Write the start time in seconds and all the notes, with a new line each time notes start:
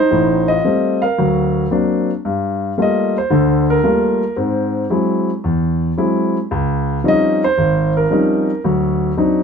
Already playing: D#4 C5
0.11 A1 A2
0.48 F4 D#5
0.64 G3 A3 C4
1.02 A#4 F5
1.18 D2 F#3
1.71 F#3 A#3 C4 D4
2.25 G2
2.78 G3 A3 A#3 F4
2.82 D#5
3.18 C5
3.30 D2 D3
3.70 A#4
3.84 G3 A3 A#3 F4
4.36 G#2 C4
4.90 F#3 G#3 C4 E4
5.44 E2
5.97 F#3 G#3 C4 E4
6.51 C#2
7.04 F3 G3 C4 C#4 D#4
7.08 D#5
7.44 C5
7.58 G#1
7.97 A#4
8.10 F3 G3 C4 C#4 D#4
8.64 D2 F#3
9.17 F#3 C4 D4 D#4